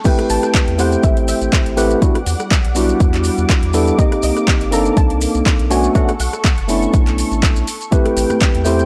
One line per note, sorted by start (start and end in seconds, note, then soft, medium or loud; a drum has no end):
0.04 0.76 A3 medium
0.04 0.76 C4 medium
0.04 0.76 E4 medium
0.04 0.77 G4 medium
0.04 0.77 B4 medium
0.04 2.00 G5 medium
0.04 0.17 G5 loud
0.04 kick loud
0.04 closed hi-hat medium
0.04 crash loud
0.04 maracas medium
0.19 cross-stick medium
0.19 closed hi-hat medium
0.30 0.38 A1 loud
0.30 0.81 A5 loud
0.30 open hi-hat loud
0.30 maracas medium
0.43 cross-stick medium
0.43 closed hi-hat soft
0.43 maracas soft
0.54 kick loud
0.54 clap loud
0.54 closed hi-hat medium
0.54 maracas soft
0.68 0.96 E2 medium
0.68 closed hi-hat medium
0.78 1.74 A3 medium
0.78 1.74 C4 medium
0.78 1.75 E4 medium
0.78 1.75 G4 medium
0.78 1.75 C5 loud
0.78 1.04 F#5 loud
0.78 open hi-hat loud
0.78 maracas medium
0.92 closed hi-hat soft
0.92 maracas soft
1.03 1.33 A1 medium
1.03 1.27 E5 loud
1.03 kick loud
1.03 closed hi-hat medium
1.03 maracas soft
1.17 closed hi-hat medium
1.28 1.74 E5 loud
1.28 open hi-hat loud
1.28 maracas medium
1.42 1.48 A1 medium
1.42 closed hi-hat soft
1.42 maracas soft
1.52 kick loud
1.52 clap loud
1.52 closed hi-hat medium
1.52 maracas medium
1.66 1.95 A1 medium
1.66 closed hi-hat medium
1.77 1.99 A3 loud
1.77 1.99 C4 medium
1.77 1.99 E4 medium
1.77 1.99 G4 medium
1.77 1.99 B4 loud
1.77 3.70 F#5 medium
1.77 open hi-hat loud
1.77 maracas medium
1.90 closed hi-hat soft
1.90 maracas soft
2.01 2.17 G3 medium
2.01 3.97 G3 medium
2.01 2.17 B3 medium
2.01 2.17 D4 medium
2.01 2.17 E4 medium
2.01 2.17 F#4 loud
2.01 3.97 F#5 medium
2.01 5.67 D6 medium
2.01 kick loud
2.01 closed hi-hat medium
2.01 maracas medium
2.15 cross-stick medium
2.15 closed hi-hat medium
2.26 2.35 E2 loud
2.26 open hi-hat loud
2.26 maracas medium
2.40 cross-stick medium
2.40 closed hi-hat soft
2.40 maracas soft
2.51 kick loud
2.51 clap loud
2.51 closed hi-hat medium
2.51 maracas medium
2.65 2.93 B1 medium
2.65 closed hi-hat medium
2.75 3.71 G3 medium
2.75 3.71 B3 medium
2.75 3.72 D4 medium
2.75 3.72 E4 medium
2.75 3.72 F#4 medium
2.75 open hi-hat loud
2.75 maracas loud
2.89 closed hi-hat soft
2.89 maracas soft
3.00 3.30 E2 medium
3.00 kick loud
3.00 closed hi-hat medium
3.00 maracas medium
3.14 clap soft
3.14 closed hi-hat medium
3.24 open hi-hat loud
3.24 maracas medium
3.38 3.45 E2 medium
3.38 closed hi-hat soft
3.38 maracas soft
3.49 kick loud
3.49 clap loud
3.49 closed hi-hat medium
3.49 maracas medium
3.63 3.91 E2 medium
3.63 closed hi-hat medium
3.74 3.96 G3 medium
3.74 3.96 B3 medium
3.74 3.96 D4 medium
3.74 3.96 E4 medium
3.74 3.96 A4 loud
3.74 open hi-hat loud
3.74 maracas medium
3.87 closed hi-hat soft
3.87 maracas soft
3.98 4.69 A#3 medium
3.98 5.69 A#3 medium
3.98 4.69 C4 medium
3.98 4.70 D#4 medium
3.98 4.70 G4 loud
3.98 4.22 D#5 loud
3.98 kick loud
3.98 closed hi-hat medium
3.98 maracas medium
4.12 cross-stick medium
4.12 closed hi-hat medium
4.23 4.31 C2 loud
4.23 4.69 D#5 loud
4.23 open hi-hat loud
4.23 maracas loud
4.37 cross-stick medium
4.37 closed hi-hat soft
4.37 maracas soft
4.48 kick loud
4.48 clap loud
4.48 closed hi-hat medium
4.48 maracas medium
4.61 4.90 G1 medium
4.61 closed hi-hat medium
4.71 5.68 A#3 medium
4.71 5.68 C4 medium
4.71 5.68 D4 medium
4.71 5.68 D#4 medium
4.71 5.69 A4 loud
4.71 4.98 A#5 loud
4.71 open hi-hat loud
4.71 maracas loud
4.85 closed hi-hat soft
4.85 maracas soft
4.97 5.26 C2 medium
4.97 5.67 A5 loud
4.97 kick loud
4.97 closed hi-hat medium
4.97 maracas soft
5.10 closed hi-hat medium
5.21 open hi-hat loud
5.21 maracas loud
5.34 5.42 C2 medium
5.34 closed hi-hat soft
5.34 maracas soft
5.46 kick loud
5.46 clap loud
5.46 closed hi-hat medium
5.46 maracas medium
5.59 5.88 B1 medium
5.59 closed hi-hat medium
5.70 5.92 A3 loud
5.70 5.92 B3 medium
5.70 5.93 C#4 medium
5.70 5.93 D4 medium
5.70 5.93 F#4 loud
5.70 7.90 A4 medium
5.70 5.94 G#5 loud
5.70 7.90 C#6 medium
5.70 open hi-hat loud
5.70 maracas medium
5.84 closed hi-hat soft
5.84 maracas soft
5.95 6.10 A3 medium
5.95 6.10 B3 medium
5.95 6.10 C#4 medium
5.95 6.10 D4 medium
5.95 6.10 F#4 loud
5.95 6.19 F#5 loud
5.95 kick loud
5.95 closed hi-hat medium
5.95 maracas medium
6.08 cross-stick medium
6.08 closed hi-hat soft
6.08 maracas soft
6.20 6.28 B1 loud
6.20 7.64 F#5 medium
6.20 open hi-hat loud
6.20 maracas medium
6.33 cross-stick medium
6.33 closed hi-hat soft
6.33 maracas soft
6.44 kick loud
6.44 clap loud
6.44 closed hi-hat medium
6.44 maracas medium
6.58 6.87 F#1 medium
6.58 closed hi-hat soft
6.68 7.65 A3 medium
6.68 7.65 B3 medium
6.68 7.65 C#4 medium
6.68 7.65 D4 medium
6.68 7.66 E4 medium
6.68 open hi-hat loud
6.68 maracas medium
6.82 closed hi-hat soft
6.82 maracas soft
6.94 7.23 B1 medium
6.94 kick loud
6.94 closed hi-hat medium
6.94 maracas medium
7.07 clap soft
7.07 closed hi-hat medium
7.18 open hi-hat loud
7.18 maracas loud
7.32 7.46 A1 loud
7.32 closed hi-hat soft
7.32 maracas soft
7.43 kick loud
7.43 clap loud
7.43 closed hi-hat medium
7.43 maracas medium
7.56 7.63 B1 medium
7.56 closed hi-hat medium
7.56 maracas soft
7.67 open hi-hat loud
7.67 maracas loud
7.81 closed hi-hat soft
7.81 maracas soft
7.91 8.63 A3 medium
7.91 8.63 C4 medium
7.91 8.63 E4 medium
7.91 8.63 G4 medium
7.91 8.64 B4 loud
7.91 8.86 G5 medium
7.91 kick loud
7.91 closed hi-hat medium
7.91 maracas soft
8.05 cross-stick medium
8.05 closed hi-hat soft
8.17 8.25 A1 loud
8.17 open hi-hat loud
8.17 maracas loud
8.30 cross-stick medium
8.30 closed hi-hat soft
8.30 high conga loud
8.30 maracas soft
8.40 kick loud
8.40 clap loud
8.40 closed hi-hat medium
8.40 maracas soft
8.55 8.83 E2 medium
8.55 closed hi-hat medium
8.65 8.86 A3 medium
8.65 8.86 C4 medium
8.65 8.86 E4 medium
8.65 8.86 G4 medium
8.65 8.86 C5 loud
8.65 open hi-hat loud
8.65 high bongo medium
8.65 maracas medium
8.79 closed hi-hat soft
8.79 maracas soft